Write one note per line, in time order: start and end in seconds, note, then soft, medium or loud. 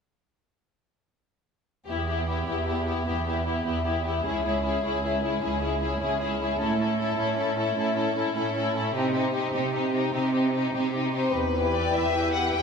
1.87 2.41 E2 soft
1.87 2.07 B3 soft
1.87 2.07 E4 soft
1.87 2.06 G4 soft
2.07 2.26 B3 soft
2.07 2.28 E4 soft
2.07 2.27 G4 soft
2.27 2.45 B3 soft
2.27 2.47 E4 soft
2.27 2.47 G4 soft
2.46 3.00 E2 soft
2.46 2.65 B3 soft
2.46 2.67 E4 soft
2.46 2.65 G4 soft
2.66 2.85 B3 soft
2.66 2.87 E4 soft
2.66 2.86 G4 soft
2.87 3.05 B3 soft
2.87 3.06 E4 soft
2.87 3.06 G4 soft
3.06 3.60 E2 soft
3.06 3.25 B3 soft
3.06 3.27 E4 soft
3.06 3.25 G4 soft
3.26 3.45 B3 soft
3.26 3.44 E4 soft
3.26 3.46 G4 soft
3.46 3.65 B3 soft
3.46 3.64 E4 soft
3.46 3.64 G4 soft
3.65 4.18 E2 soft
3.65 3.84 B3 soft
3.65 3.84 E4 soft
3.65 3.84 G4 soft
3.85 4.05 B3 soft
3.85 4.04 E4 soft
3.85 4.04 G4 soft
4.05 4.25 B3 soft
4.05 4.25 E4 soft
4.05 4.24 G4 soft
4.25 4.77 C#2 soft
4.25 4.45 C#4 soft
4.25 4.45 E4 soft
4.25 4.44 G#4 soft
4.46 4.65 C#4 soft
4.46 4.62 E4 soft
4.46 4.64 G#4 soft
4.64 4.84 C#4 soft
4.64 4.83 E4 soft
4.64 4.84 G#4 soft
4.83 5.35 C#2 soft
4.83 5.03 C#4 soft
4.83 5.02 E4 soft
4.83 5.03 G#4 soft
5.04 5.23 C#4 soft
5.04 5.21 E4 soft
5.04 5.22 G#4 soft
5.22 5.41 C#4 soft
5.22 5.41 E4 soft
5.22 5.42 G#4 soft
5.41 5.93 C#2 soft
5.41 5.61 C#4 soft
5.41 5.61 E4 soft
5.41 5.61 G#4 soft
5.62 5.81 C#4 soft
5.62 5.80 E4 soft
5.62 5.80 G#4 soft
5.81 5.99 C#4 soft
5.81 6.00 E4 soft
5.81 6.01 G#4 soft
6.00 6.52 C#2 soft
6.00 6.19 C#4 soft
6.00 6.19 E4 soft
6.00 6.20 G#4 soft
6.20 6.39 C#4 soft
6.20 6.40 E4 soft
6.20 6.40 G#4 soft
6.40 6.57 C#4 soft
6.40 6.60 E4 soft
6.40 6.60 G#4 soft
6.58 7.11 A2 soft
6.58 6.78 C#4 soft
6.58 6.79 E4 soft
6.58 6.79 A4 soft
6.79 6.96 C#4 soft
6.79 6.98 E4 soft
6.79 6.98 A4 soft
6.97 7.15 C#4 soft
6.97 7.18 E4 soft
6.97 7.18 A4 soft
7.17 7.70 A2 soft
7.17 7.35 C#4 soft
7.17 7.38 E4 soft
7.17 7.37 A4 soft
7.36 7.55 C#4 soft
7.36 7.56 E4 soft
7.36 7.57 A4 soft
7.56 7.74 C#4 soft
7.56 7.76 E4 soft
7.56 7.76 A4 soft
7.75 8.28 A2 soft
7.75 7.94 C#4 soft
7.75 7.96 E4 soft
7.75 7.96 A4 soft
7.95 8.14 C#4 soft
7.95 8.16 E4 soft
7.95 8.16 A4 soft
8.15 8.33 C#4 soft
8.15 8.36 E4 soft
8.15 8.35 A4 soft
8.34 8.88 A2 soft
8.34 8.52 C#4 soft
8.34 8.56 E4 soft
8.34 8.54 A4 soft
8.53 8.72 C#4 soft
8.53 8.74 A4 soft
8.58 8.76 E4 soft
8.74 8.94 C#4 soft
8.74 8.95 E4 soft
8.74 8.95 A4 soft
8.94 9.47 C3 soft
8.94 9.12 C4 soft
8.94 9.15 D#4 soft
8.94 9.12 G4 soft
9.13 9.32 C4 soft
9.13 9.33 D#4 soft
9.13 9.32 G4 soft
9.33 9.53 C4 soft
9.33 9.53 D#4 soft
9.33 9.52 G4 soft
9.54 10.06 C3 soft
9.54 9.72 C4 soft
9.54 9.73 D#4 soft
9.54 9.73 G4 soft
9.74 9.91 C4 soft
9.74 9.93 D#4 soft
9.74 9.92 G4 soft
9.92 10.11 C4 soft
9.92 10.14 D#4 soft
9.92 10.13 G4 soft
10.12 10.66 C3 soft
10.12 10.31 C4 soft
10.12 10.34 D#4 soft
10.12 10.33 G4 soft
10.33 10.52 C4 soft
10.33 10.54 D#4 soft
10.33 10.52 G4 soft
10.53 10.72 C4 soft
10.53 10.74 D#4 soft
10.53 10.73 G4 soft
10.73 11.27 C3 soft
10.73 10.91 C4 soft
10.73 10.94 D#4 soft
10.73 10.93 G4 soft
10.92 11.13 C4 soft
10.92 11.14 D#4 soft
10.92 11.13 G4 soft
11.14 11.34 C4 soft
11.14 11.34 D#4 soft
11.14 11.34 G4 soft
11.14 11.33 C5 soft
11.33 11.86 E2 soft
11.33 11.73 B4 soft
11.54 12.12 E3 soft
11.54 12.12 E4 soft
11.54 12.12 G4 soft
11.54 12.12 B4 soft
11.74 11.94 D5 soft
11.94 12.46 E2 soft
11.94 12.34 E5 soft
12.13 12.62 E3 soft
12.13 12.62 E4 soft
12.13 12.62 G4 soft
12.13 12.62 B4 soft
12.33 12.53 F#5 soft
12.54 12.62 E2 soft
12.54 12.62 G5 soft